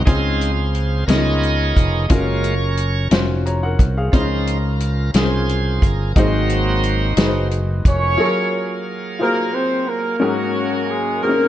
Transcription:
0.05 1.05 C#2 medium
0.05 1.05 C#3 soft
0.05 0.51 G#3 soft
0.05 0.78 C4 medium
0.05 0.78 C#4 medium
0.05 0.51 D#4 soft
0.05 0.52 F4 soft
0.05 0.79 F4 medium
0.05 1.05 G#4 medium
0.05 0.79 G#4 medium
0.05 1.04 C5 medium
0.05 1.06 F5 medium
0.05 kick loud
0.05 closed hi-hat medium
0.41 closed hi-hat soft
0.75 closed hi-hat soft
1.07 1.72 C#2 medium
1.07 2.07 C#3 medium
1.07 2.06 B3 soft
1.07 1.80 B3 soft
1.07 2.06 D#4 soft
1.07 1.80 D#4 soft
1.07 1.16 E4 soft
1.07 2.06 F4 medium
1.07 2.07 G#4 medium
1.07 2.05 A#4 soft
1.07 2.06 C#5 medium
1.07 2.14 D#5 medium
1.07 snare medium
1.07 closed hi-hat medium
1.11 1.81 A#4 medium
1.17 1.84 F4 soft
1.43 closed hi-hat soft
1.77 2.08 F1 medium
1.77 kick medium
1.77 closed hi-hat soft
2.09 3.08 F#1 medium
2.09 2.54 G#3 soft
2.09 2.55 A#3 soft
2.09 2.81 C#4 medium
2.09 3.08 C#4 medium
2.09 2.81 F4 medium
2.09 2.82 F#4 medium
2.09 3.08 A#4 medium
2.09 2.82 A#4 medium
2.09 3.08 C#5 medium
2.09 2.55 F5 medium
2.09 kick loud
2.09 closed hi-hat medium
2.44 closed hi-hat soft
2.77 closed hi-hat soft
3.11 3.75 F1 medium
3.11 3.83 C#4 medium
3.11 3.83 F4 medium
3.11 3.83 F#4 medium
3.11 3.46 C5 medium
3.11 snare loud
3.11 closed hi-hat medium
3.46 3.62 C#5 soft
3.46 3.62 A#5 medium
3.46 closed hi-hat soft
3.63 3.96 A#4 medium
3.63 3.95 F#5 medium
3.79 4.10 C2 medium
3.79 kick medium
3.79 closed hi-hat soft
3.97 4.13 G#4 soft
3.97 4.29 F5 medium
4.12 5.11 C#2 medium
4.12 5.11 C#3 medium
4.12 4.58 F3 medium
4.12 4.84 C#4 medium
4.12 4.58 D#4 medium
4.12 4.20 D#4 soft
4.12 5.11 F4 medium
4.12 4.85 G#4 medium
4.12 5.11 A#4 medium
4.12 4.58 C5 soft
4.12 4.85 C5 medium
4.12 kick medium
4.12 closed hi-hat medium
4.21 4.88 F4 medium
4.47 closed hi-hat soft
4.80 closed hi-hat soft
5.14 5.78 C2 medium
5.14 5.85 C#4 medium
5.14 5.86 F4 soft
5.14 6.13 F4 medium
5.14 6.12 G#4 medium
5.14 5.86 G#4 medium
5.14 5.22 A#4 soft
5.14 snare medium
5.14 closed hi-hat medium
5.18 5.86 C5 medium
5.24 5.90 C5 medium
5.49 closed hi-hat soft
5.82 6.13 G1 medium
5.82 kick medium
5.82 closed hi-hat soft
5.86 6.19 A#4 medium
6.16 7.13 G#1 medium
6.16 7.14 G#2 medium
6.16 7.13 F#3 soft
6.16 7.14 A#3 soft
6.16 7.14 C4 soft
6.16 6.87 D#4 medium
6.16 7.48 D#4 medium
6.16 6.87 F#4 medium
6.16 7.48 F#4 medium
6.16 6.88 G#4 medium
6.16 6.88 C5 medium
6.16 kick medium
6.16 closed hi-hat medium
6.20 7.49 C5 medium
6.50 closed hi-hat soft
6.83 closed hi-hat soft
7.17 7.81 F#1 medium
7.17 7.48 F#3 soft
7.17 7.48 A#3 soft
7.17 7.48 C4 soft
7.17 7.88 D#4 medium
7.17 7.88 F#4 medium
7.17 7.89 G#4 medium
7.17 7.24 B4 medium
7.17 snare loud
7.17 closed hi-hat medium
7.26 7.92 C5 medium
7.51 closed hi-hat soft
7.85 8.16 F1 medium
7.85 8.83 C#4 medium
7.85 8.83 F4 medium
7.85 8.83 A#4 medium
7.85 8.83 C#5 loud
7.85 kick medium
7.85 closed hi-hat soft
8.17 8.89 F#3 medium
8.17 10.17 F#3 medium
8.17 10.16 A#3 soft
8.17 8.89 F4 medium
8.17 10.16 G#4 medium
8.17 8.89 G#4 medium
8.17 8.25 A4 medium
8.17 10.16 F5 medium
8.25 8.93 A#4 medium
9.19 9.52 A#3 medium
9.19 9.90 F4 medium
9.19 9.91 F#4 soft
9.19 9.91 G#4 medium
9.19 9.52 A#4 medium
9.19 9.91 C5 medium
9.53 9.87 C4 medium
9.53 9.87 C5 medium
9.87 10.21 A#3 medium
9.87 10.21 A#4 medium
10.20 11.18 G#2 medium
10.20 11.48 F#3 medium
10.20 10.89 F#3 medium
10.20 11.48 A#3 medium
10.20 10.91 C#4 medium
10.20 11.48 C#4 medium
10.20 10.92 F#4 medium
10.20 10.89 F#4 medium
10.20 10.92 G#4 medium
10.20 11.48 G#4 medium
10.20 10.92 A#4 medium
10.25 11.20 A#3 medium
10.25 11.20 C#4 medium
10.89 11.22 G#3 medium
10.89 11.22 G#4 medium
11.22 11.48 A#3 medium
11.22 11.29 C4 soft
11.22 11.48 C#4 medium
11.22 11.48 F#4 soft
11.22 11.48 F#4 medium
11.22 11.48 G#4 soft
11.22 11.48 A#4 loud
11.22 11.48 A#4 medium
11.29 11.48 C#4 medium

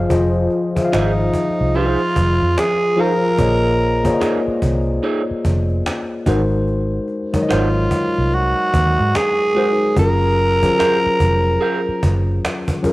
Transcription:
0.00 0.09 F3 medium
0.00 0.10 F4 medium
0.00 0.11 G#4 medium
0.00 0.12 C5 medium
0.00 0.12 D5 medium
0.00 0.12 D#5 medium
0.00 0.12 F5 medium
0.09 0.46 F1 medium
0.09 0.68 F3 medium
0.09 0.68 F4 medium
0.09 0.69 G#4 medium
0.09 0.69 C5 medium
0.09 0.70 D#5 medium
0.09 cajon bass loud
0.34 cajon slap soft
0.50 cajon slap soft
0.75 2.20 F3 medium
0.75 2.20 F4 medium
0.75 2.20 G#4 medium
0.75 2.21 C5 medium
0.75 0.82 E5 medium
0.75 cajon bass medium
0.85 2.24 F5 medium
0.93 1.29 G#1 medium
0.93 1.10 D#4 medium
0.93 1.77 D#4 medium
0.93 1.11 G#4 medium
0.93 1.11 C5 medium
0.93 cajon slap loud
0.93 cajon slap medium
1.34 cajon bass medium
1.56 cajon slap soft
1.61 1.95 C2 medium
1.74 1.99 D#4 medium
1.74 2.60 F4 loud
1.74 2.00 G#4 medium
1.74 2.00 C5 medium
1.74 cajon slap soft
2.16 2.38 F1 medium
2.16 cajon bass medium
2.41 2.56 F2 medium
2.41 cajon slap soft
2.58 3.02 G#4 medium
2.58 cajon slap loud
2.96 3.35 F3 medium
2.96 3.12 D#4 medium
2.96 3.35 F4 medium
2.96 3.36 G#4 medium
2.96 3.12 G#4 medium
2.96 3.36 C5 medium
2.96 3.12 C5 medium
2.96 3.36 F5 medium
2.96 cajon slap soft
3.01 4.64 A#4 loud
3.22 cajon slap soft
3.24 cajon slap soft
3.38 4.10 A#1 loud
3.38 3.97 A#3 medium
3.38 3.97 F4 medium
3.38 3.97 G#4 medium
3.38 3.98 C5 medium
3.38 3.98 C#5 medium
3.38 3.98 D#5 medium
3.38 cajon bass medium
3.79 cajon slap soft
4.04 5.48 A#3 medium
4.04 5.49 F4 medium
4.04 5.49 G#4 medium
4.04 5.49 C5 medium
4.04 5.49 C#5 medium
4.04 4.11 D5 medium
4.04 cajon bass medium
4.13 5.53 D#5 medium
4.21 4.39 D#4 medium
4.21 4.39 G#4 medium
4.21 4.40 C#5 medium
4.21 cajon slap medium
4.48 muted fingered electric bass stroke soft
4.62 4.98 C2 medium
4.62 cajon bass medium
4.85 cajon slap soft
5.03 5.21 D#4 medium
5.03 5.21 G#4 medium
5.03 5.22 C#5 medium
5.03 cajon slap soft
5.31 muted fingered electric bass stroke soft
5.45 5.80 F1 medium
5.45 cajon bass medium
5.69 cajon slap soft
5.86 cajon slap loud
6.26 6.98 G#1 medium
6.26 7.21 G#3 medium
6.26 6.41 D#4 medium
6.26 7.21 D#4 medium
6.26 6.41 F#4 medium
6.26 7.21 F#4 medium
6.26 7.22 A#4 medium
6.26 6.41 C5 medium
6.26 7.22 C5 loud
6.26 cajon bass medium
6.50 cajon slap soft
6.52 cajon slap soft
6.67 cajon slap soft
6.92 cajon slap soft
7.08 cajon slap soft
7.33 8.78 F#3 medium
7.33 8.77 G#3 medium
7.33 8.78 D#4 medium
7.33 8.78 A#4 medium
7.33 7.40 C#5 medium
7.33 cajon bass medium
7.43 8.82 D#5 medium
7.49 7.87 G#1 medium
7.49 7.67 D#4 medium
7.49 8.36 F4 medium
7.49 7.68 F#4 medium
7.49 7.68 C5 medium
7.49 cajon slap loud
7.49 cajon slap medium
7.91 cajon bass medium
8.14 cajon slap soft
8.18 8.53 C2 medium
8.32 9.18 F#4 loud
8.32 cajon slap soft
8.74 8.96 D#2 medium
8.74 cajon bass medium
8.97 9.13 G#2 loud
8.97 cajon slap soft
9.15 9.98 G#4 medium
9.15 cajon slap loud
9.15 cajon slap medium
9.54 9.93 G#3 medium
9.54 9.70 D#4 medium
9.54 9.93 D#4 medium
9.54 9.70 F#4 medium
9.54 9.94 F#4 medium
9.54 9.94 A#4 medium
9.54 9.70 C5 medium
9.54 cajon slap soft
9.58 9.94 C5 medium
9.80 cajon slap soft
9.81 cajon slap soft
9.96 10.68 F#1 loud
9.96 10.55 F#3 medium
9.96 10.55 C#4 medium
9.96 10.55 F4 medium
9.96 10.56 G#4 medium
9.96 10.56 A#4 medium
9.96 12.40 A#4 loud
9.96 cajon bass loud
10.21 cajon slap soft
10.37 cajon slap soft
10.62 12.06 F#3 medium
10.62 12.06 C#4 medium
10.62 12.07 F4 medium
10.62 12.07 G#4 medium
10.62 12.08 C5 medium
10.62 cajon bass medium
10.78 10.96 G#4 medium
10.78 10.97 A#4 loud
10.78 10.97 F5 medium
10.78 cajon slap loud
10.78 cajon slap medium
11.05 muted fingered electric bass stroke soft
11.05 cajon slap soft
11.20 11.56 F1 medium
11.20 cajon bass medium
11.43 cajon slap soft
11.61 11.79 G#4 medium
11.61 11.79 A#4 medium
11.61 11.79 F5 medium
11.61 cajon slap soft
11.86 muted fingered electric bass stroke soft
11.86 cajon slap soft
12.03 12.39 F#1 medium
12.03 cajon bass medium
12.27 cajon slap soft
12.45 cajon slap loud
12.45 cajon slap medium
12.68 cajon bass loud
12.83 12.93 F#3 medium
12.83 12.93 C#4 medium
12.83 12.93 F4 medium
12.83 12.93 G#4 medium
12.83 12.93 A#4 medium
12.83 cajon bass medium

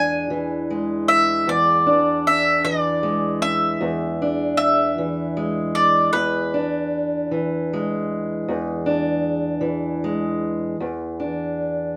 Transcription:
0.00 1.47 E2 medium
0.00 0.30 E3 medium
0.00 0.70 G#3 medium
0.00 1.50 D4 medium
0.00 1.08 G#5 loud
0.30 1.89 E3 medium
0.70 1.89 G#3 medium
1.08 1.48 E5 medium
1.47 3.80 E2 medium
1.47 2.28 D5 medium
1.86 4.21 D4 medium
2.27 2.62 E5 medium
2.64 4.98 E3 medium
2.64 3.42 D5 medium
3.03 5.36 G#3 medium
3.42 4.56 E5 medium
3.81 6.14 E2 medium
4.22 6.17 D4 medium
4.57 5.75 E5 medium
4.98 6.57 E3 medium
5.37 6.57 G#3 medium
5.75 6.12 D5 medium
6.13 8.48 E2 medium
6.13 8.42 B4 medium
6.54 8.85 D4 medium
7.31 9.60 E3 medium
7.73 10.03 G#3 medium
8.48 10.79 E2 medium
8.86 10.75 D4 medium
9.61 11.23 E3 medium
10.04 10.76 G#3 medium
10.80 11.97 E2 medium
11.20 11.97 D4 medium

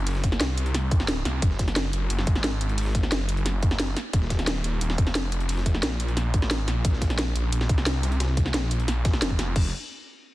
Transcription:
0.00 0.39 F#1 loud
0.07 closed hi-hat loud
0.07 open hi-hat medium
0.15 snare soft
0.24 kick medium
0.24 closed hi-hat medium
0.32 snare soft
0.41 1.24 C2 loud
0.41 snare loud
0.41 closed hi-hat medium
0.41 closed hi-hat loud
0.57 closed hi-hat medium
0.66 closed hi-hat soft
0.74 snare medium
0.74 closed hi-hat loud
0.91 kick loud
0.91 closed hi-hat medium
1.00 snare medium
1.00 snare soft
1.08 snare loud
1.08 closed hi-hat loud
1.08 closed hi-hat medium
1.25 1.41 C2 loud
1.25 snare medium
1.25 closed hi-hat medium
1.42 1.92 F#1 loud
1.42 kick loud
1.42 closed hi-hat medium
1.51 snare soft
1.59 kick medium
1.59 snare medium
1.59 closed hi-hat medium
1.68 snare soft
1.68 closed hi-hat soft
1.76 snare loud
1.76 closed hi-hat medium
1.85 snare soft
1.93 2.09 F#1 loud
1.93 closed hi-hat medium
2.10 2.26 F#1 medium
2.10 closed hi-hat medium
2.19 snare medium
2.19 snare soft
2.27 3.10 G#1 loud
2.27 kick loud
2.27 closed hi-hat medium
2.36 snare soft
2.44 snare loud
2.44 closed hi-hat medium
2.61 closed hi-hat medium
2.69 closed hi-hat soft
2.78 closed hi-hat medium
2.78 open hi-hat medium
2.86 snare soft
2.95 kick medium
2.95 closed hi-hat medium
3.03 snare soft
3.12 3.95 F#1 loud
3.12 snare loud
3.12 closed hi-hat medium
3.29 closed hi-hat medium
3.37 closed hi-hat soft
3.46 snare medium
3.46 closed hi-hat medium
3.63 kick loud
3.63 closed hi-hat medium
3.71 snare medium
3.71 snare soft
3.80 snare loud
3.80 closed hi-hat medium
3.88 snare soft
3.96 snare soft
3.96 closed hi-hat medium
4.13 4.63 D#1 loud
4.13 kick loud
4.13 closed hi-hat medium
4.22 snare soft
4.30 kick medium
4.30 snare medium
4.30 closed hi-hat medium
4.39 snare soft
4.39 closed hi-hat soft
4.47 snare loud
4.47 closed hi-hat medium
4.56 snare soft
4.64 4.80 D#1 loud
4.64 closed hi-hat medium
4.81 4.97 D#1 medium
4.81 closed hi-hat medium
4.90 snare medium
4.90 snare soft
4.98 5.82 F1 loud
4.98 kick loud
4.98 closed hi-hat medium
5.07 snare soft
5.15 snare loud
5.15 closed hi-hat medium
5.32 closed hi-hat medium
5.41 closed hi-hat soft
5.49 closed hi-hat medium
5.49 open hi-hat medium
5.58 snare soft
5.66 kick medium
5.66 closed hi-hat medium
5.75 snare soft
5.83 6.42 A#1 loud
5.83 snare loud
5.83 closed hi-hat medium
6.00 closed hi-hat medium
6.08 closed hi-hat soft
6.17 snare medium
6.17 closed hi-hat medium
6.34 kick loud
6.34 closed hi-hat medium
6.42 6.66 A1 loud
6.42 snare medium
6.42 snare soft
6.51 snare loud
6.51 closed hi-hat medium
6.51 closed hi-hat loud
6.68 6.83 A#1 loud
6.68 snare soft
6.68 closed hi-hat medium
6.85 7.34 A#1 loud
6.85 kick loud
6.85 closed hi-hat medium
6.85 closed hi-hat loud
6.93 snare soft
7.02 kick medium
7.02 snare medium
7.02 closed hi-hat medium
7.10 snare soft
7.10 closed hi-hat soft
7.19 snare loud
7.19 closed hi-hat medium
7.27 snare soft
7.35 7.51 A#1 loud
7.35 closed hi-hat medium
7.52 7.68 A#1 loud
7.52 closed hi-hat medium
7.61 snare medium
7.61 snare soft
7.69 8.53 C2 loud
7.69 kick loud
7.69 closed hi-hat medium
7.78 snare soft
7.86 snare loud
7.86 closed hi-hat medium
7.86 closed hi-hat loud
8.03 snare soft
8.03 closed hi-hat medium
8.12 closed hi-hat soft
8.20 snare loud
8.20 closed hi-hat loud
8.20 closed hi-hat medium
8.29 snare soft
8.37 kick medium
8.37 closed hi-hat medium
8.46 snare soft
8.54 8.87 A#1 loud
8.54 snare loud
8.54 closed hi-hat loud
8.54 closed hi-hat medium
8.71 closed hi-hat medium
8.80 closed hi-hat soft
8.88 9.21 A#1 loud
8.88 snare medium
8.88 closed hi-hat loud
8.88 closed hi-hat medium
9.05 kick loud
9.05 snare loud
9.05 closed hi-hat medium
9.13 snare medium
9.13 snare soft
9.22 9.54 F1 medium
9.22 snare loud
9.22 closed hi-hat loud
9.22 closed hi-hat medium
9.30 kick medium
9.39 snare loud
9.39 snare soft
9.39 closed hi-hat medium
9.56 9.72 F1 loud
9.56 kick loud
9.56 crash medium

